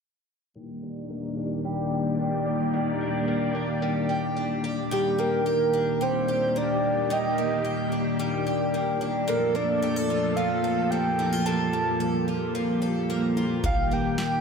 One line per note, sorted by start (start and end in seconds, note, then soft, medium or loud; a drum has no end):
0.55 2.73 D#3 medium
0.55 4.88 D#3 medium
0.55 4.88 A#3 medium
0.55 4.88 G4 medium
0.55 4.88 D5 medium
0.83 1.37 D4 soft
1.10 3.27 A#3 soft
1.37 2.19 D4 soft
1.65 3.82 G3 medium
1.92 2.45 G4 soft
2.19 3.00 D4 medium
2.46 4.09 G4 medium
2.74 4.91 D#3 medium
3.01 3.54 D4 soft
3.28 5.18 A#3 medium
3.55 4.36 D4 soft
3.82 6.00 G3 medium
4.09 4.64 G4 medium
4.37 5.73 D4 medium
4.64 4.92 G4 medium
4.91 9.24 D#3 medium
4.91 7.09 D#3 medium
4.91 9.24 A#3 medium
4.91 9.23 G4 medium
4.91 5.45 G4 medium
4.91 5.21 G4 medium
5.18 6.55 A#3 medium
5.18 6.04 A#4 loud
5.46 6.27 G4 medium
5.73 7.13 D4 soft
6.01 8.18 G3 medium
6.01 6.59 C5 loud
6.28 7.10 G4 medium
6.56 7.38 A#3 medium
6.56 7.14 D5 loud
7.10 9.28 D#3 medium
7.10 7.63 G4 medium
7.10 7.93 D#5 loud
7.38 8.74 A#3 medium
7.65 8.45 G4 medium
7.92 9.01 D4 soft
8.19 9.34 G3 medium
8.47 9.28 G4 medium
8.74 9.54 A#3 medium
9.01 10.10 D4 medium
9.28 11.45 A#2 medium
9.28 13.60 F3 medium
9.28 14.41 A#3 medium
9.28 11.44 A4 medium
9.28 9.82 A4 medium
9.28 9.57 A#4 medium
9.55 10.91 A#3 medium
9.55 10.38 D5 loud
9.82 9.96 G4 medium
9.96 10.63 A4 soft
10.10 11.18 F4 medium
10.36 12.54 F3 medium
10.36 10.92 F5 medium
10.64 11.45 A4 medium
10.91 11.73 A#3 medium
10.91 11.45 G5 loud
11.19 11.33 D#4 medium
11.33 12.27 F4 soft
11.45 13.64 A#2 medium
11.45 14.41 G4 medium
11.45 11.99 A4 medium
11.45 12.24 A5 loud
11.73 13.09 A#3 medium
12.00 12.81 A4 medium
12.28 13.36 F4 soft
12.55 13.70 F3 medium
12.82 13.64 A4 medium
13.10 13.91 A#3 medium
13.37 13.70 F4 medium
13.64 14.41 D#3 medium
13.64 14.17 G4 medium
13.64 13.95 F5 loud
13.64 kick medium
13.64 floor tom medium
13.91 14.41 A#3 medium
13.91 14.41 G5 loud
14.18 14.41 G4 medium
14.18 snare loud